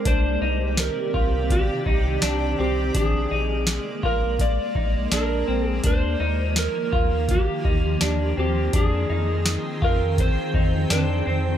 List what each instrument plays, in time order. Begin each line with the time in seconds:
0.05 analog synth bass C2, ambient pad C3 D#3 C4 G4 D5, clean electric guitar D4, electric slide guitar C5, kick, closed hi-hat
0.42 analog synth bass C2, clean electric guitar D#4
0.77 electric slide guitar A#4, snare, closed hi-hat, tambourine
1.14 analog synth bass C2, clean electric guitar F4, kick
1.50 electric slide guitar G4, kick, closed hi-hat
1.86 analog synth bass C2, clean electric guitar D#4, kick
2.22 analog synth bass C2, clean electric guitar D4, snare, closed hi-hat, tambourine
2.59 analog synth bass C2, clean electric guitar C4, electric slide guitar G4
2.94 analog synth bass A#1, ambient pad G#3 A#3, clean electric guitar D4, electric slide guitar G#4, kick, closed hi-hat
3.31 analog synth bass A#1, clean electric guitar D#4
3.67 snare, closed hi-hat, tambourine
4.03 analog synth bass A#1, clean electric guitar F4, electric slide guitar A#4, kick
4.39 electric slide guitar D5, kick, closed hi-hat
4.75 analog synth bass A#1, clean electric guitar D#4, kick
5.12 analog synth bass A#1, clean electric guitar D4, electric slide guitar A#4, snare, closed hi-hat, tambourine
5.48 analog synth bass A#1, clean electric guitar C4
5.69 electric slide guitar G#4
5.84 analog synth bass D#2, ambient pad D#3 F3, clean electric guitar D4, electric slide guitar C5, kick, closed hi-hat
6.20 analog synth bass D#2, clean electric guitar D#4
6.56 electric slide guitar A#4, snare, closed hi-hat, tambourine
6.93 analog synth bass D#2, clean electric guitar F4, kick
7.29 electric slide guitar G4, kick, closed hi-hat
7.65 analog synth bass D#2, clean electric guitar D#4, kick
8.01 analog synth bass D#2, clean electric guitar D4, snare, closed hi-hat, tambourine
8.37 analog synth bass D#2, clean electric guitar C4, electric slide guitar G4
8.73 analog synth bass F2, ambient pad C4 G#4 G5, clean electric guitar D4, electric slide guitar G#4, kick, closed hi-hat
9.10 analog synth bass F2, clean electric guitar D#4
9.46 snare, closed hi-hat, tambourine
9.82 analog synth bass F2, clean electric guitar F4, electric slide guitar A#4, kick
10.18 electric slide guitar C5, kick, closed hi-hat
10.54 analog synth bass F2, clean electric guitar D#4, kick
10.90 analog synth bass F2, clean electric guitar D4, electric slide guitar C5, snare, closed hi-hat, tambourine
11.27 analog synth bass F2, clean electric guitar C4